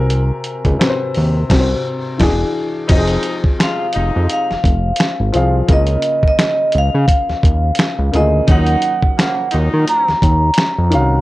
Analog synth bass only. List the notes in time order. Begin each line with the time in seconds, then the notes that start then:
Already playing: C2
0.66 C#2
1.17 D#2
1.51 C2
2.20 E1
2.90 F1
3.96 F1
4.16 F2
4.51 F1
4.65 F1
5.20 G#1
5.35 C2
5.69 C#2
6.75 C#2
6.94 C#3
7.29 D#2
7.44 D#2
7.99 C#2
8.14 D2
8.49 D#2
9.54 D#2
9.74 D#3
10.09 D#2
10.23 D#2
10.78 F2
10.94 C2